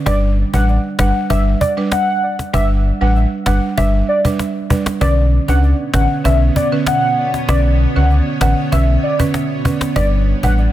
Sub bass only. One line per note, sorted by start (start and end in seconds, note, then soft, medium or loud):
0.06 0.44 G1 loud
0.54 0.78 A1 loud
0.99 1.12 G1 loud
1.30 1.55 G1 loud
2.54 2.91 G1 loud
3.01 3.26 A1 loud
3.46 3.59 G1 medium
3.78 4.02 G1 loud
5.01 5.39 B1 loud
5.49 5.73 C#2 medium
5.94 6.07 A1 medium
6.25 6.50 B1 loud
7.49 7.86 B1 loud
7.96 8.21 C#2 loud
8.41 8.54 A1 loud
8.72 8.97 B1 loud
9.96 10.34 G1 loud
10.43 10.68 A1 loud